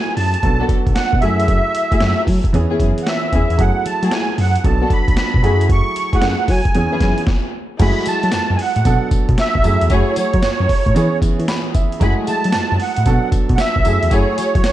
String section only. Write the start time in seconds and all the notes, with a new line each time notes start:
0.59 B3 D4 F#4 A4
1.22 A3 E4 F#4 G#4
1.91 A3 E4 F#4 G#4
2.70 B3 C#4 E4 G#4
3.32 B3 C#4 E4 G#4
4.02 A3 E4 F#4 G#4
4.81 B3 D4 F#4 A4
5.43 A3 E4 F#4 G#4
6.13 A3 E4 F#4 G#4
6.91 B3 C#4 E4 G#4
7.79 A3 E4 F#4 G#4
9.90 A3 E4 F#4 G#4
12.01 A3 E4 F#4 G#4
14.11 A3 E4 F#4 G#4